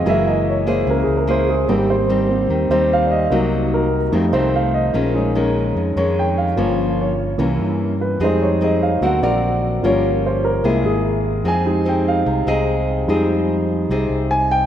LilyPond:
<<
  \new Staff \with { instrumentName = "Grand piano" } { \time 4/4 \key f \minor \tempo 4 = 147 r1 | r1 | r1 | r1 |
r1 | r1 | r1 | r1 |
r2. aes''8 g''8 | }
  \new Staff \with { instrumentName = "Grand piano" } { \time 4/4 \key f \minor fes''8 ees''8 des''8 c''8 \tuplet 3/2 { bes'8 aes'8 bes'8 } c''8 aes'8 | g'8 c''8 r4. c''8 f''8 <d'' ees''>8~ | <d'' ees''>4 bes'8 r4 c''8 f''8 ees''8~ | ees''4 bes'8 r4 des''8 g''8 f''8~ |
f''4 des''8 r2 b'8 | c''8 des''8 ees''8 f''8 fis''8 d''8 r4 | des''4 c''8 bes'4 gis'4. | aes''4 g''8 f''4 ees''4. |
r1 | }
  \new Staff \with { instrumentName = "Grand piano" } { \time 4/4 \key f \minor <fes aes bes>1 | <g bes c'>8 r4 <g bes c'>8 r2 | <ges bes ees'>2 <g a ees'>8 r4. | r8 <aes des' ees'>2.~ <aes des' ees'>8 |
<f bes des'>8 r4. <e bes des'>4. r8 | <g aes ees'>8 r4. <fis ais c'>8 r4. | <f bes des'>2 <gis bes e'>8 r4. | r8 <aes ees' g'>4. r2 |
<g aes ees'>8 r2. r8 | }
  \new Staff \with { instrumentName = "Nylon-string guitar" } { \time 4/4 \key f \minor << { <bes fes' aes'>4. <bes fes' aes'>4. <bes fes' aes'>8 r8 | <g c' ees'>8 r8 <g c' ees'>4. <g c' ees'>4. | <ges bes ees'>4. r8 <ees a c'>8 <ees a c'>4. | <ees aes des'>4 <ees aes des'>4. <ees aes des'>4. |
<f bes des'>4. r8 <e bes des'>4. r8 | <c' ees' aes'>4 <c' ees' aes'>8 r8 <c' fis' ais'>8 <c' fis' ais'>4. | <des' f' bes'>2 <bes e' gis'>2 | <c' ees' aes'>4 <c' ees' aes'>4. <c' ees' aes'>4. |
<c' ees' aes'>4. r8 <c' ees' aes'>2 | } \\ { ges2 des2 | aes,2 ees2 | c2 f,2 | bes,2 f,2 |
g,2 c2 | f2 d2 | g2 c2 | f2 c2 |
f2 c2 | } >> }
  \new Staff \with { instrumentName = "Fingered electric bass" } { \clef bass \time 4/4 \key f \minor ges,,2 des,8 des,4. | aes,,2 ees,8 ees,4. | c,2 f,8 c,4. | bes,,2 f,8 f,4. |
g,,2 c,8 g,4. | f,2 d,8 ais,,4. | g,,2 c,8 gis,,4. | f,2 c,8 c,4. |
f,2 c,8 c,4. | }
>>